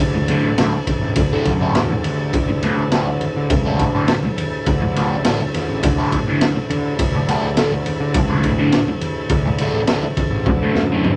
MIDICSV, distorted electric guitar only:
0, 0, Header, 1, 3, 480
1, 0, Start_track
1, 0, Time_signature, 4, 2, 24, 8
1, 0, Tempo, 581959
1, 9208, End_track
2, 0, Start_track
2, 0, Title_t, "Distorted electric guitar"
2, 0, Program_c, 0, 30
2, 240, Note_on_c, 0, 38, 71
2, 246, Note_on_c, 0, 45, 75
2, 254, Note_on_c, 0, 50, 91
2, 396, Note_off_c, 0, 38, 0
2, 399, Note_off_c, 0, 45, 0
2, 403, Note_off_c, 0, 50, 0
2, 492, Note_on_c, 0, 38, 70
2, 499, Note_on_c, 0, 45, 81
2, 501, Note_on_c, 0, 50, 80
2, 602, Note_off_c, 0, 50, 0
2, 606, Note_off_c, 0, 38, 0
2, 607, Note_off_c, 0, 45, 0
2, 1089, Note_on_c, 0, 50, 81
2, 1097, Note_on_c, 0, 45, 74
2, 1100, Note_on_c, 0, 38, 67
2, 1243, Note_off_c, 0, 50, 0
2, 1247, Note_off_c, 0, 45, 0
2, 1248, Note_off_c, 0, 38, 0
2, 1326, Note_on_c, 0, 50, 73
2, 1331, Note_on_c, 0, 45, 67
2, 1336, Note_on_c, 0, 38, 56
2, 1482, Note_off_c, 0, 50, 0
2, 1484, Note_off_c, 0, 45, 0
2, 1487, Note_off_c, 0, 38, 0
2, 2168, Note_on_c, 0, 38, 80
2, 2176, Note_on_c, 0, 50, 82
2, 2177, Note_on_c, 0, 45, 76
2, 2324, Note_off_c, 0, 38, 0
2, 2328, Note_off_c, 0, 45, 0
2, 2328, Note_off_c, 0, 50, 0
2, 2415, Note_on_c, 0, 38, 80
2, 2422, Note_on_c, 0, 45, 75
2, 2425, Note_on_c, 0, 50, 92
2, 2527, Note_off_c, 0, 50, 0
2, 2532, Note_off_c, 0, 38, 0
2, 2533, Note_off_c, 0, 45, 0
2, 3012, Note_on_c, 0, 50, 83
2, 3016, Note_on_c, 0, 45, 72
2, 3024, Note_on_c, 0, 38, 71
2, 3167, Note_off_c, 0, 50, 0
2, 3169, Note_off_c, 0, 45, 0
2, 3173, Note_off_c, 0, 38, 0
2, 3253, Note_on_c, 0, 50, 80
2, 3259, Note_on_c, 0, 45, 62
2, 3266, Note_on_c, 0, 38, 57
2, 3408, Note_off_c, 0, 50, 0
2, 3411, Note_off_c, 0, 45, 0
2, 3414, Note_off_c, 0, 38, 0
2, 4092, Note_on_c, 0, 38, 67
2, 4099, Note_on_c, 0, 45, 80
2, 4103, Note_on_c, 0, 50, 87
2, 4248, Note_off_c, 0, 38, 0
2, 4251, Note_off_c, 0, 45, 0
2, 4253, Note_off_c, 0, 50, 0
2, 4344, Note_on_c, 0, 38, 70
2, 4350, Note_on_c, 0, 45, 75
2, 4355, Note_on_c, 0, 50, 85
2, 4453, Note_off_c, 0, 50, 0
2, 4458, Note_off_c, 0, 38, 0
2, 4461, Note_off_c, 0, 45, 0
2, 4932, Note_on_c, 0, 50, 88
2, 4937, Note_on_c, 0, 45, 74
2, 4941, Note_on_c, 0, 38, 71
2, 5088, Note_off_c, 0, 50, 0
2, 5090, Note_off_c, 0, 45, 0
2, 5092, Note_off_c, 0, 38, 0
2, 5176, Note_on_c, 0, 50, 69
2, 5180, Note_on_c, 0, 45, 67
2, 5182, Note_on_c, 0, 38, 60
2, 5329, Note_off_c, 0, 50, 0
2, 5332, Note_off_c, 0, 38, 0
2, 5332, Note_off_c, 0, 45, 0
2, 6006, Note_on_c, 0, 38, 76
2, 6011, Note_on_c, 0, 45, 85
2, 6016, Note_on_c, 0, 50, 87
2, 6164, Note_off_c, 0, 38, 0
2, 6166, Note_off_c, 0, 45, 0
2, 6169, Note_off_c, 0, 50, 0
2, 6241, Note_on_c, 0, 38, 71
2, 6251, Note_on_c, 0, 45, 77
2, 6257, Note_on_c, 0, 50, 82
2, 6360, Note_off_c, 0, 50, 0
2, 6365, Note_off_c, 0, 38, 0
2, 6370, Note_off_c, 0, 45, 0
2, 6839, Note_on_c, 0, 50, 94
2, 6846, Note_on_c, 0, 45, 82
2, 6850, Note_on_c, 0, 38, 64
2, 6999, Note_off_c, 0, 50, 0
2, 7002, Note_off_c, 0, 45, 0
2, 7005, Note_off_c, 0, 38, 0
2, 7078, Note_on_c, 0, 50, 68
2, 7085, Note_on_c, 0, 45, 64
2, 7087, Note_on_c, 0, 38, 65
2, 7238, Note_off_c, 0, 50, 0
2, 7241, Note_off_c, 0, 45, 0
2, 7243, Note_off_c, 0, 38, 0
2, 7924, Note_on_c, 0, 38, 72
2, 7927, Note_on_c, 0, 45, 85
2, 7933, Note_on_c, 0, 50, 75
2, 8079, Note_off_c, 0, 38, 0
2, 8081, Note_off_c, 0, 45, 0
2, 8084, Note_off_c, 0, 50, 0
2, 8169, Note_on_c, 0, 38, 71
2, 8171, Note_on_c, 0, 45, 80
2, 8180, Note_on_c, 0, 50, 79
2, 8283, Note_off_c, 0, 50, 0
2, 8286, Note_off_c, 0, 38, 0
2, 8287, Note_off_c, 0, 45, 0
2, 8759, Note_on_c, 0, 50, 94
2, 8762, Note_on_c, 0, 45, 78
2, 8771, Note_on_c, 0, 38, 76
2, 8916, Note_off_c, 0, 50, 0
2, 8917, Note_off_c, 0, 45, 0
2, 8922, Note_off_c, 0, 38, 0
2, 9002, Note_on_c, 0, 50, 74
2, 9005, Note_on_c, 0, 45, 77
2, 9011, Note_on_c, 0, 38, 66
2, 9156, Note_off_c, 0, 50, 0
2, 9158, Note_off_c, 0, 45, 0
2, 9161, Note_off_c, 0, 38, 0
2, 9208, End_track
3, 0, Start_track
3, 0, Title_t, "Muted distorted electric guitar strokes"
3, 127, Note_on_c, 9, 29, 49
3, 209, Note_off_c, 9, 29, 0
3, 612, Note_on_c, 9, 29, 51
3, 694, Note_off_c, 9, 29, 0
3, 973, Note_on_c, 9, 29, 39
3, 1056, Note_off_c, 9, 29, 0
3, 1573, Note_on_c, 9, 29, 55
3, 1656, Note_off_c, 9, 29, 0
3, 2053, Note_on_c, 9, 29, 52
3, 2136, Note_off_c, 9, 29, 0
3, 2537, Note_on_c, 9, 29, 50
3, 2620, Note_off_c, 9, 29, 0
3, 2894, Note_on_c, 9, 29, 45
3, 2976, Note_off_c, 9, 29, 0
3, 3501, Note_on_c, 9, 29, 56
3, 3583, Note_off_c, 9, 29, 0
3, 3970, Note_on_c, 9, 29, 59
3, 4052, Note_off_c, 9, 29, 0
3, 4463, Note_on_c, 9, 29, 48
3, 4545, Note_off_c, 9, 29, 0
3, 4821, Note_on_c, 9, 29, 41
3, 4903, Note_off_c, 9, 29, 0
3, 5407, Note_on_c, 9, 29, 55
3, 5489, Note_off_c, 9, 29, 0
3, 5896, Note_on_c, 9, 29, 56
3, 5978, Note_off_c, 9, 29, 0
3, 6370, Note_on_c, 9, 29, 49
3, 6453, Note_off_c, 9, 29, 0
3, 6726, Note_on_c, 9, 29, 48
3, 6808, Note_off_c, 9, 29, 0
3, 7323, Note_on_c, 9, 29, 51
3, 7406, Note_off_c, 9, 29, 0
3, 7801, Note_on_c, 9, 29, 55
3, 7883, Note_off_c, 9, 29, 0
3, 8293, Note_on_c, 9, 29, 51
3, 8376, Note_off_c, 9, 29, 0
3, 8642, Note_on_c, 9, 29, 47
3, 8725, Note_off_c, 9, 29, 0
3, 9208, End_track
0, 0, End_of_file